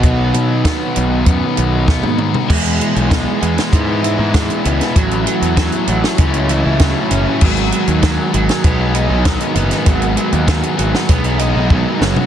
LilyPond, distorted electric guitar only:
\new Staff \with { instrumentName = "Distorted electric guitar" } { \time 4/4 \key gis \phrygian \tempo 4 = 98 b,8 fis8 b8 dis'8 b8 fis8 b8 dis'8 | <e, b, e gis b e'>8. <e gis b e'>16 <e, b, e gis b e'>8 <e gis b e'>16 <e gis b e'>16 <e gis b e'>16 <e gis b e'>16 <e gis b e'>16 <e gis b e'>16 <e, b, e gis b e'>8 <e gis b e'>16 <e gis b e'>16 | <a, e a cis' e'>8. <a cis' e'>16 <a, e a cis' e'>8 <e a cis' e'>16 <a cis' e'>16 <e a cis' e'>16 <a cis' e'>16 <e a cis' e'>16 <a cis' e'>16 <a, e a cis' e'>8 <e a cis' e'>16 <a cis' e'>16 | <gis, dis gis b dis' gis'>8. <gis b dis' gis'>16 <gis, dis gis b dis' gis'>8 <gis b dis' gis'>16 <gis b dis' gis'>16 <gis b dis' gis'>16 <gis b dis' gis'>16 <gis b dis' gis'>16 <gis b dis' gis'>16 <gis, dis gis b dis' gis'>8 <gis b dis' gis'>16 <gis b dis' gis'>16 |
<gis, dis gis b dis' gis'>8. <gis b dis' gis'>16 <gis, dis gis b dis' gis'>8 <gis b dis' gis'>16 <gis b dis' gis'>16 <gis b dis' gis'>16 <gis b dis' gis'>16 <gis b dis' gis'>16 <gis b dis' gis'>16 <gis, dis gis b dis' gis'>8 <fis, cis fis b cis' fis'>16 <fis b cis' fis'>16 | }